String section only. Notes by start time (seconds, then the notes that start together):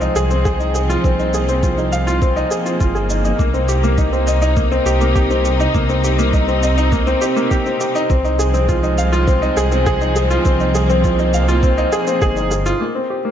Already playing: F3 G#3 C4
1.04 A#3
3.39 C3 D#4
5.75 C4
8.10 F3 G#3 C4
10.45 A#3
12.81 C3 A#3 D#4